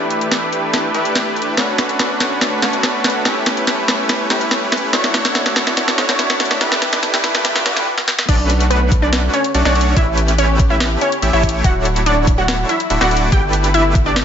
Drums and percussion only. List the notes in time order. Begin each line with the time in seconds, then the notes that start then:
0.10 closed hi-hat
0.21 closed hi-hat
0.32 snare, closed hi-hat
0.53 closed hi-hat
0.74 snare, closed hi-hat
0.94 closed hi-hat
1.05 closed hi-hat
1.15 snare, closed hi-hat
1.36 closed hi-hat
1.42 closed hi-hat
1.57 snare, closed hi-hat
1.78 snare, closed hi-hat
1.89 closed hi-hat
1.99 snare, closed hi-hat
2.20 snare, closed hi-hat
2.41 snare, closed hi-hat
2.62 snare, closed hi-hat
2.73 closed hi-hat
2.83 snare, closed hi-hat
3.04 snare, closed hi-hat
3.10 closed hi-hat
3.25 snare, closed hi-hat
3.46 snare, closed hi-hat
3.57 closed hi-hat
3.67 snare, closed hi-hat
3.88 snare, closed hi-hat
4.09 snare, closed hi-hat
4.30 snare, closed hi-hat
4.41 closed hi-hat
4.51 snare, closed hi-hat
4.72 snare, closed hi-hat
4.78 closed hi-hat
4.93 snare, closed hi-hat
5.04 snare
5.14 snare, closed hi-hat
5.25 snare, closed hi-hat
5.35 snare, closed hi-hat
5.46 snare
5.56 snare, closed hi-hat
5.67 snare
5.77 snare, closed hi-hat
5.88 snare
5.98 snare, closed hi-hat
6.09 snare, closed hi-hat
6.19 snare, closed hi-hat
6.30 snare
6.40 snare, closed hi-hat
6.45 closed hi-hat
6.51 snare
6.61 snare, closed hi-hat
6.72 snare
6.82 snare, closed hi-hat
6.93 snare, closed hi-hat
7.03 snare, closed hi-hat
7.14 snare
7.24 snare, closed hi-hat
7.35 snare
7.45 snare, closed hi-hat
7.56 snare
7.66 snare, closed hi-hat
7.77 snare, closed hi-hat
7.98 snare
8.08 snare
8.19 snare
8.29 kick, closed hi-hat, crash
8.50 closed hi-hat
8.60 closed hi-hat
8.71 closed hi-hat
8.92 kick, closed hi-hat
9.13 snare, closed hi-hat
9.34 closed hi-hat
9.44 closed hi-hat
9.55 closed hi-hat
9.65 snare
9.76 closed hi-hat
9.81 closed hi-hat
9.96 kick, closed hi-hat
10.18 closed hi-hat
10.28 closed hi-hat
10.38 closed hi-hat
10.59 kick, closed hi-hat
10.80 snare, closed hi-hat
11.01 closed hi-hat
11.12 closed hi-hat
11.22 closed hi-hat
11.43 kick, closed hi-hat
11.49 closed hi-hat
11.64 kick, closed hi-hat
11.85 closed hi-hat
11.96 closed hi-hat
12.06 closed hi-hat
12.27 kick, closed hi-hat
12.48 snare, closed hi-hat
12.69 closed hi-hat
12.80 closed hi-hat
12.90 closed hi-hat
13.01 snare
13.11 closed hi-hat
13.17 closed hi-hat
13.32 kick, closed hi-hat
13.53 closed hi-hat
13.64 closed hi-hat
13.74 closed hi-hat
13.95 kick, closed hi-hat
14.16 snare, closed hi-hat